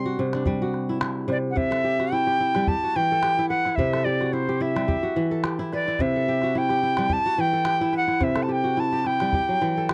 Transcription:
Already playing: C3 G3 G4 C6
0.06 F#4
0.19 C3
0.33 D4, calabash click
0.46 G3, calabash thump
0.62 F#4
0.74 calabash click
0.89 E4
1.01 E4, calabash click
1.28 C3 D5, calabash click
1.51 F#5
1.56 C3 E5, calabash thump
1.71 A4, calabash click
1.84 G4
2.00 F#4, calabash click
2.12 E4 G5
2.27 G4, calabash click
2.40 E4
2.55 G3, calabash click
2.67 G4 A5, calabash thump
2.84 F#4
2.96 E3 G5, calabash click
3.12 A4
3.23 G4, calabash click
3.39 E4
3.49 B4 F#5, calabash click
3.65 E4, calabash click
3.76 C3 E5, calabash thump
3.94 A4, calabash click
4.04 G4 D5
4.21 F#4, calabash click
4.25 D5
4.33 E4 C5
4.49 G4, calabash click
4.61 E4 E5
4.76 G3, calabash click
4.88 G4, calabash thump
5.03 F#4
5.16 E3, calabash click
5.31 A4
5.44 G4, calabash click
5.59 E4
5.73 B4 D5, calabash click
5.87 E4, calabash click
5.99 C3 E5, calabash thump
6.16 A4
6.28 G4
6.42 F#4, calabash click
6.55 E4 G5
6.69 G4, calabash click
6.83 E4
6.97 G3, calabash click
7.09 G4 A5, calabash thump
7.26 F#4
7.38 E3 G5, calabash click
7.53 A4
7.65 G4, calabash click
7.81 E4
7.93 B4, calabash click
7.97 F#5
8.08 E4, calabash click
8.20 C3 E5, calabash thump, calabash click
8.36 A4, calabash click
8.43 A5
8.49 G4 G5
8.64 F#4
8.77 E4 A5
8.92 G4, calabash click
9.05 E4 G5, calabash click
9.20 G3, calabash click
9.33 G4, calabash thump
9.49 F#3
9.61 E3, calabash click
9.77 A4
9.89 G4, calabash click

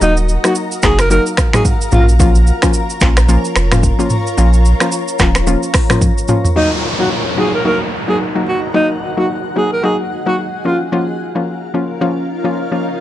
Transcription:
Already playing: F#4 A#4 A#5
0.01 D#1 F#3 A#3 D#4 F#4 F5, shaker
0.17 shaker
0.29 shaker
0.44 F#3 A#3 D#4 F#4, finger snap, cross-stick, shaker
0.55 shaker
0.72 shaker
0.82 F#1 F#3 A#3 D#4 F#4 G#4, finger snap, kick, cross-stick, clap, shaker
0.99 A#4, finger snap, cross-stick, shaker
1.10 F#3 A#3 D#4 F#4 A#4, shaker
1.26 shaker
1.37 finger snap, kick, cross-stick, shaker
1.53 F#3 A#3 D#4 F#4 G#4, finger snap, cross-stick, mid tom, shaker
1.65 kick, shaker
1.81 shaker
1.92 A#1 F3 A#3 C#4 F4 C#5, mid tom, shaker
2.09 shaker
2.19 F3 A#3 C#4 F4, kick, shaker
2.35 shaker
2.47 shaker
2.62 F3 A#3 C#4 F4, finger snap, kick, cross-stick, shaker
2.74 shaker
2.90 shaker
3.01 A#1 F3 A#3 C#4 F4, finger snap, kick, cross-stick, clap, shaker
3.17 finger snap, cross-stick, shaker
3.29 F3 A#3 C#4 F4, shaker
3.45 shaker
3.56 F1, finger snap, cross-stick, shaker
3.72 F3 A#3 C#4 F4, finger snap, cross-stick, mid tom, shaker
3.83 kick, shaker
3.99 F3 A#3 C#4 F4, shaker
4.10 mid tom, shaker
4.27 shaker
4.37 A#1 F3 A#3 C#4 F4, shaker
4.53 shaker
4.65 shaker
4.80 F3 A#3 C#4 F4, finger snap, cross-stick, shaker
4.92 shaker
5.08 shaker
5.19 D#1 F3 A#3 C#4 F4, finger snap, kick, cross-stick, clap, shaker
5.35 finger snap, cross-stick, shaker
5.47 F3 A#3 C#4 F4, shaker
5.63 shaker
5.74 finger snap, kick, cross-stick, open hi-hat, shaker
5.90 F3 A#3 C#4 F4, finger snap, cross-stick, mid tom, shaker
6.01 kick, high tom, shaker
6.18 shaker
6.28 F3 A#3 C#4 F4, mid tom, shaker
6.45 floor tom, shaker
6.56 F#3 A#3 D#4 F#4 A#4 F#5, downlifter
6.99 F#3 A#3 D#4 F#4
7.37 F#3 A#3 D#4 F#4 G#4
7.55 A#4
7.65 F#3 A#3 D#4 F#4 A#4
8.08 F#3 A#3 D#4 F#4 G#4
8.35 F#3 A#3 D#4 F#4
8.48 F#4
8.74 F#3 A#3 D#4 F#4 G#4
9.17 F#3 A#3 D#4 F#4
9.56 F#3 A#3 D#4 F#4 G#4
9.73 A#4
9.83 F#3 A#3 D#4 F#4 G#4
10.26 F#3 A#3 D#4 F#4
10.65 F3 A#3 C#4 F4 A#4 F5
10.92 F3 A#3 C#4 F4, swell
11.35 F3 A#3 C#4 F4
11.74 F3 A#3 C#4 F4
12.01 F3 A#3 C#4 F4
12.44 F3 A#3 C#4 F4
12.72 F3 A#3 C#4 F4

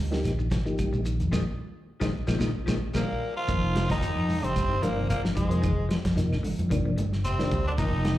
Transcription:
Already playing: D2
0.11 D3 F3 A#3 D#4 G4, snare, shekere
0.24 A#1, snare, closed hi-hat, high conga, claves, shekere
0.39 D#3, shekere
0.51 G#1 F3, kick, snare, closed hi-hat, high conga, shekere
0.65 D#3 F3 A#3 D#4 G4, shekere
0.78 kick, closed hi-hat, high conga, claves, shekere
0.93 A#1 F3, high conga, shekere
1.05 D#3, closed hi-hat, shekere
1.20 F2, closed hi-hat, shekere
1.32 A#1 A#2 D#3 F3 G#3 A#3 D#4, kick, snare, high conga, claves, shekere
2.00 A#1 A#2 D#3 F3 G#3 A#3 D#4, kick, snare, high conga, claves, shekere
2.27 A#1 A#2 D#3 F3 G#3 A#3 D#4, kick, snare, high conga, claves, shekere
2.39 A#1 A#2 D#3 F3 G#3 A#3 D#4, kick, snare, high conga, claves, shekere
2.66 A#1 A#2 D#3 F3 G#3 A#3 D#4, kick, snare, high conga, claves, shekere
2.93 A#1 A#2 D#3 F3 G#3 A#3 D#4, kick, snare, high conga, claves, shekere
3.37 F3 F4
3.48 F1 C3 D#3 F3 A#3 D#4, kick, closed hi-hat, low conga, claves, shekere
3.76 snare, closed hi-hat, high conga, claves, shekere
3.89 F1 D#3 F3 D#4, kick, snare, closed hi-hat
4.01 D#3, closed hi-hat, shekere
4.16 F2, claves
4.29 open hi-hat, high conga, low conga, shekere
4.42 F1 C3 D3 C4, closed hi-hat, low conga
4.56 G1, kick, closed hi-hat, high conga, claves, shekere
4.69 D#3
4.82 G1 A#2 F3 A#3 D4, closed hi-hat, high conga, shekere
4.96 C3 D#3 F3 A#3 C4
5.09 G1 A#2 A#3, closed hi-hat, claves, shekere
5.23 F3, snare
5.35 F2 G#2 D#3 G#3, kick, closed hi-hat, high conga, shekere
5.50 C3 F3 A#3 C4, closed hi-hat
5.62 F1 D#3, kick, closed hi-hat, low conga, claves, shekere
5.89 F3, snare, closed hi-hat, high conga, claves, shekere
6.05 F2, kick, snare, closed hi-hat
6.16 C3 D#3 F3 A#3 D#4, snare, closed hi-hat, shekere
6.31 G#1, snare, claves
6.43 D3, open hi-hat, high conga, low conga, shekere
6.59 F2, closed hi-hat, high conga, low conga
6.70 G1 C3 D#3 F3 A#3 D4, kick, closed hi-hat, high conga, claves, shekere
6.85 F3
6.98 G1 D3, closed hi-hat, high conga, shekere
7.13 snare
7.25 F1 C3 C4, closed hi-hat, claves, shekere
7.39 C3 D#3 F3 A#3 D4, snare
7.51 D2 G3, kick, closed hi-hat, shekere
7.67 D3 D4
7.78 F1 C3 D#3 F3 A#3 D#4, kick, closed hi-hat, low conga, claves, shekere
8.05 snare, closed hi-hat, high conga, claves, shekere

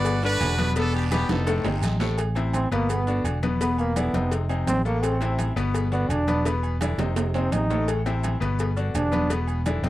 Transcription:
Already playing: G1 B2 B3 F#4 B4 D5
0.05 cowbell, high conga, low agogo, long guiro, maracas
0.23 D3 D4 F#4 B4, high conga, low agogo, maracas
0.40 E1, cowbell, high conga, low timbale, low agogo, short guiro, maracas
0.58 B2 B3 B4, cowbell, high conga, short guiro, maracas
0.76 B2 B3 D4 A4 B4, cowbell, low agogo, long guiro, maracas
0.94 G4, high conga, low agogo, maracas
1.11 B2 B3 G4 B4, cowbell, high conga, low agogo, short guiro, maracas
1.29 F1 C4 D#4 A4, cowbell, high bongo, high conga, high timbale, short guiro, maracas
1.47 A2 A3 A4, cowbell, high conga, high timbale, low agogo, long guiro, maracas
1.64 G1 C3 C4 D#4, low bongo, high conga, low timbale, low agogo, maracas
1.82 A1, cowbell, high conga, low agogo, short guiro, maracas
2.00 A2 A3 A4, low bongo, high conga, low timbale, short guiro, maracas
2.18 cowbell, high conga, low agogo, maracas
2.35 C3 C4 E4, cowbell, high conga, low agogo, maracas
2.53 C4, cowbell, high conga, low agogo, maracas
2.71 G1 B2 A#3 B3 B4, cowbell, high conga, maracas
2.89 B3, cowbell, high conga, low agogo, maracas
3.07 D3 D4 F#4, high conga, low agogo, maracas
3.24 E1, cowbell, high conga, low agogo, maracas
3.43 B2 B3 B4, cowbell, high conga, maracas
3.61 B2 B3 B4, cowbell, low agogo, maracas
3.78 A#3, high conga, low agogo, maracas
3.96 D3 B3 D4 E4, cowbell, high conga, low agogo, maracas
4.13 F1 C3 C4 D#4, cowbell, high conga, maracas
4.31 cowbell, high conga, low agogo, maracas
4.49 C3 C4 D#4, high conga, low agogo, maracas
4.67 A1 C4, cowbell, high conga, low timbale, low agogo, maracas
4.85 A2 A3 A#3 A4, maracas
5.03 C4, cowbell, high conga, low agogo, maracas
5.21 C3 C4 E4, cowbell, high conga, low agogo, maracas
5.39 cowbell, high conga, low agogo, maracas
5.56 G1 B2 B3 B4, cowbell, high conga, maracas
5.74 cowbell, high conga, low agogo, maracas
5.92 D3 B3 D4 F#4, high conga, low agogo, maracas
6.09 E1 D4, cowbell, high conga, low agogo, maracas
6.27 B2 B3 B4, cowbell, high conga, maracas
6.45 B2 B3 B4, cowbell, high timbale, low agogo, maracas
6.63 high conga, low agogo, maracas
6.81 D3 D4 E4, cowbell, high conga, high timbale, low agogo, maracas
6.98 F1 C3 C4 D#4, cowbell, high conga, low timbale, maracas
7.16 cowbell, low timbale, low agogo, maracas
7.34 C3 C4 D#4, high conga, low timbale, low agogo, maracas
7.52 A1 D#4, cowbell, high conga, low timbale, low agogo, maracas
7.70 A2 A3 A4, high conga, low timbale, maracas
7.88 cowbell, high conga, low agogo, maracas
8.06 C3 C4 E4, cowbell, high conga, low agogo, maracas
8.24 cowbell, high conga, low agogo, maracas
8.40 G1 B2 B3 B4, cowbell, high conga, maracas
8.59 cowbell, high conga, low agogo, maracas
8.76 D3 B3 D4 F#4, high conga, low agogo, maracas
8.94 E1 D4, cowbell, high conga, low timbale, low agogo, maracas
9.12 B2 B3 B4, cowbell, high conga, maracas
9.30 B2 B3 B4, cowbell, high conga, low agogo, maracas
9.47 high conga, low agogo, maracas
9.66 D3 D4 E4, cowbell, high conga, low agogo, maracas
9.82 F1 C3 C4 D#4, cowbell, high conga, maracas

